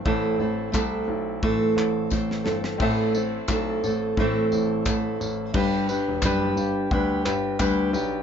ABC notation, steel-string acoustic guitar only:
X:1
M:4/4
L:1/8
Q:"Swing 16ths" 1/4=88
K:Ador
V:1 name="Steel-string acoustic guitar"
[A,,E,A,CEA] [A,CEA] [A,CEA]2 [A,,E,A,CEA]2 [A,CEA] [A,CEA] | [A,,E,A,CEA] [A,CEA] [A,CEA] [A,CEA] [A,,E,A,CEA]2 [A,CEA]2 | [G,DGB] [DGB] [G,DGB]2 [G,DGB] [DGB] [G,DGB] [DGB] |]